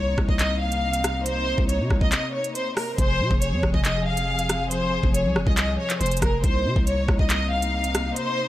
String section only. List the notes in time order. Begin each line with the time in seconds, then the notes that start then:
Already playing: C3 A#3 D#4
2.99 C3 F3 G#4
6.44 C3 A#3 D#4